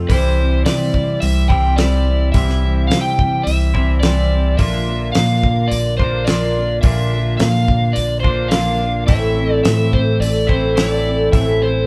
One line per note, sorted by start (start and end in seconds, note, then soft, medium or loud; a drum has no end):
0.00 0.11 C4 medium
0.00 0.11 F4 soft
0.00 0.10 A4 medium
0.09 0.62 C2 medium
0.09 0.38 C3 medium
0.09 0.38 E3 medium
0.09 0.38 G3 medium
0.09 0.38 C4 medium
0.09 0.38 E4 medium
0.09 0.65 C5 medium
0.09 0.37 C5 medium
0.09 kick loud
0.09 open hi-hat medium
0.38 0.66 G3 soft
0.38 0.66 C4 soft
0.38 0.67 E4 soft
0.38 0.66 C5 medium
0.65 1.18 C3 medium
0.65 0.95 C3 medium
0.65 0.95 E3 medium
0.65 0.95 G3 medium
0.65 0.95 C4 medium
0.65 0.95 E4 medium
0.65 0.95 C5 medium
0.65 1.24 D5 medium
0.65 snare loud
0.65 open hi-hat medium
0.94 1.22 C4 soft
0.94 1.23 E4 soft
0.94 1.23 C5 medium
0.94 kick medium
0.99 1.21 G3 soft
1.20 2.31 C2 medium
1.20 1.51 G3 medium
1.20 1.51 C4 medium
1.20 1.50 E4 medium
1.20 1.50 E5 medium
1.20 open hi-hat soft
1.25 1.49 C5 medium
1.48 1.76 C3 medium
1.48 1.77 E3 medium
1.48 1.78 C4 soft
1.48 1.78 E4 soft
1.48 1.78 C5 medium
1.48 1.78 G5 medium
1.48 kick medium
1.53 1.77 G3 soft
1.76 2.06 C3 medium
1.76 2.06 E3 medium
1.76 2.06 G3 medium
1.76 2.06 C4 medium
1.76 2.05 E4 medium
1.76 2.05 C5 medium
1.76 2.31 D5 medium
1.76 snare loud
1.76 open hi-hat soft
2.06 2.33 G3 soft
2.06 2.32 C4 soft
2.06 2.34 E4 soft
2.06 2.33 C5 soft
2.32 2.87 C2 medium
2.32 2.62 C3 medium
2.32 2.62 E3 medium
2.32 2.62 G3 medium
2.32 2.62 C4 medium
2.32 2.61 E4 medium
2.32 2.61 C5 medium
2.32 2.87 E5 medium
2.32 kick loud
2.32 open hi-hat medium
2.49 snare soft
2.62 2.90 G3 soft
2.62 2.90 C4 soft
2.62 2.90 E4 medium
2.62 2.90 C5 medium
2.87 3.42 C3 medium
2.87 3.19 C3 medium
2.87 3.19 E3 medium
2.87 3.19 G3 medium
2.87 3.19 C4 medium
2.87 3.18 C5 medium
2.87 3.01 F5 medium
2.87 open hi-hat medium
2.92 3.19 E4 medium
2.92 snare loud
3.01 3.46 G5 medium
3.19 3.44 G3 soft
3.19 3.45 C4 soft
3.19 3.46 E4 soft
3.19 3.47 C5 medium
3.19 kick medium
3.43 4.55 C2 medium
3.43 3.74 G3 medium
3.43 3.75 C4 medium
3.43 3.75 E4 medium
3.43 4.00 E5 medium
3.43 open hi-hat soft
3.49 3.73 C5 medium
3.74 4.02 C3 medium
3.74 4.02 E3 medium
3.74 4.03 G3 soft
3.74 4.04 C4 soft
3.74 4.04 E4 soft
3.74 4.03 C5 soft
3.74 kick medium
4.00 4.31 C3 medium
4.00 4.31 E3 medium
4.00 4.59 D5 medium
4.00 snare loud
4.00 open hi-hat medium
4.05 4.32 G3 medium
4.05 4.32 C4 medium
4.05 4.31 E4 medium
4.05 4.30 C5 medium
4.31 4.58 G3 soft
4.31 4.59 C4 soft
4.31 4.59 E4 medium
4.31 4.59 C5 medium
4.57 5.11 A#1 medium
4.57 4.86 A#2 medium
4.57 5.98 D3 medium
4.57 4.87 F3 medium
4.57 4.87 A#3 medium
4.57 4.87 D4 medium
4.57 4.86 F4 medium
4.57 4.85 A#4 medium
4.57 5.12 E5 medium
4.57 kick loud
4.57 open hi-hat medium
4.86 5.13 A#3 soft
4.86 5.14 D4 soft
4.86 5.14 F4 soft
4.86 5.14 A#4 medium
5.12 5.43 A#2 medium
5.12 5.68 A#2 medium
5.12 5.43 F3 medium
5.12 5.43 A#3 medium
5.12 5.44 D4 medium
5.12 5.44 F4 medium
5.12 5.43 A#4 medium
5.12 5.72 F5 medium
5.12 snare loud
5.12 open hi-hat medium
5.43 5.69 A#3 soft
5.43 5.71 D4 soft
5.43 5.72 F4 soft
5.43 5.72 A#4 medium
5.43 kick medium
5.68 6.80 A#1 medium
5.68 5.99 A#3 medium
5.68 5.97 D5 medium
5.68 open hi-hat medium
5.72 6.00 D4 medium
5.72 5.98 F4 medium
5.72 5.98 A#4 medium
5.97 6.25 A#3 soft
5.97 6.25 D4 soft
5.97 6.26 F4 soft
5.97 6.26 A#4 medium
5.97 6.28 C5 medium
5.97 kick medium
6.02 6.26 A#2 medium
6.02 6.27 D3 medium
6.25 6.55 A#2 medium
6.25 6.82 D3 medium
6.25 6.55 F3 medium
6.25 6.55 A#3 medium
6.25 6.55 D4 medium
6.25 6.55 F4 medium
6.25 6.53 A#4 medium
6.25 6.81 D5 medium
6.25 snare loud
6.25 open hi-hat soft
6.55 6.82 A#3 soft
6.55 6.83 D4 soft
6.55 6.83 F4 soft
6.55 6.83 A#4 soft
6.81 7.36 A#1 medium
6.81 7.11 A#2 medium
6.81 8.22 D3 medium
6.81 7.12 F3 medium
6.81 7.12 A#3 medium
6.81 7.12 D4 medium
6.81 7.12 F4 medium
6.81 7.11 A#4 medium
6.81 7.37 E5 medium
6.81 kick loud
6.81 open hi-hat medium
7.12 7.39 A#3 soft
7.12 7.38 D4 soft
7.12 7.39 F4 soft
7.12 7.39 A#4 medium
7.37 7.67 A#2 medium
7.37 7.92 A#2 medium
7.37 7.67 F3 medium
7.37 7.68 A#3 medium
7.37 7.68 D4 medium
7.37 7.67 F4 medium
7.37 7.66 A#4 medium
7.37 7.97 F5 medium
7.37 snare loud
7.37 open hi-hat medium
7.67 7.96 A#3 soft
7.67 7.96 D4 soft
7.67 7.96 F4 soft
7.67 7.96 A#4 medium
7.67 kick medium
7.93 9.05 A#1 medium
7.93 8.20 D5 medium
7.93 open hi-hat soft
7.97 8.25 A#3 medium
7.97 8.25 D4 medium
7.97 8.24 F4 medium
7.97 8.22 A#4 medium
8.20 8.52 A#4 medium
8.20 8.48 C5 medium
8.24 8.50 A#2 medium
8.24 8.50 D3 medium
8.24 8.51 A#3 soft
8.24 8.52 D4 soft
8.24 8.52 F4 soft
8.24 kick medium
8.48 8.80 A#2 medium
8.48 9.07 D3 medium
8.48 8.80 F3 medium
8.48 8.80 A#3 medium
8.48 9.06 F5 medium
8.48 snare loud
8.48 open hi-hat medium
8.53 8.81 D4 medium
8.53 8.81 F4 medium
8.53 8.80 A#4 medium
8.81 9.10 A#3 soft
8.81 9.09 D4 soft
8.81 9.09 F4 medium
8.81 9.09 A#4 medium
9.07 9.61 A1 medium
9.07 9.37 A2 medium
9.07 9.37 E3 medium
9.07 9.38 A3 medium
9.07 9.38 C4 medium
9.07 9.62 E5 medium
9.07 kick loud
9.07 open hi-hat medium
9.11 9.36 E4 medium
9.11 9.35 A4 medium
9.37 9.65 A3 soft
9.37 9.65 C4 soft
9.37 9.65 E4 medium
9.37 9.65 A4 medium
9.64 10.17 A2 medium
9.64 9.93 A2 medium
9.64 9.94 E3 medium
9.64 9.94 A3 medium
9.64 9.93 C4 medium
9.64 9.92 E4 medium
9.64 9.91 A4 medium
9.64 9.93 E5 medium
9.64 snare loud
9.64 open hi-hat medium
9.92 10.19 A3 soft
9.92 10.21 C4 soft
9.92 10.21 E4 soft
9.92 10.21 A4 medium
9.92 10.22 C5 medium
9.92 kick medium
10.20 11.29 A1 medium
10.20 10.49 A3 medium
10.20 10.50 C4 medium
10.20 10.50 E4 medium
10.20 10.49 A4 medium
10.20 10.49 D5 medium
10.20 open hi-hat medium
10.47 10.74 A2 medium
10.47 10.76 E3 medium
10.47 10.76 A3 medium
10.47 10.75 C4 medium
10.47 10.78 E4 medium
10.47 10.78 A4 soft
10.47 10.78 C5 medium
10.47 kick medium
10.52 10.77 A3 soft
10.52 10.77 C4 soft
10.52 10.78 E4 medium
10.75 11.06 A2 medium
10.75 11.06 E3 medium
10.75 11.06 A3 medium
10.75 11.06 C4 medium
10.75 11.05 E4 medium
10.75 11.04 A4 medium
10.75 11.32 D5 medium
10.75 snare loud
10.75 open hi-hat medium
11.05 11.33 A3 soft
11.05 11.34 C4 soft
11.05 11.34 E4 soft
11.05 11.33 A4 medium
11.32 11.85 A1 medium
11.32 11.62 A2 medium
11.32 11.62 E3 medium
11.32 11.62 A3 medium
11.32 11.63 C4 medium
11.32 11.63 E4 medium
11.32 11.62 A4 medium
11.32 11.62 E5 medium
11.32 kick loud
11.32 open hi-hat medium
11.62 11.87 C4 soft
11.62 11.87 E4 soft
11.62 11.87 C5 medium
11.67 11.87 A3 soft